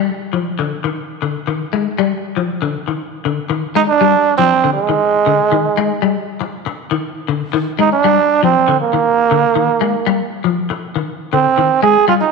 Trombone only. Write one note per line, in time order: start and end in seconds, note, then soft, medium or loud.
3.76 3.82 D#4 medium
3.88 4.35 D4 loud
4.37 4.73 C4 loud
4.74 6.23 G#3 medium
7.80 7.92 D#4 loud
7.93 8.40 D4 loud
8.44 8.78 C4 medium
8.81 10.28 A#3 medium
11.34 11.80 C4 medium
11.83 12.06 G#4 loud
12.08 12.14 F4 loud
12.21 12.32 D#4 medium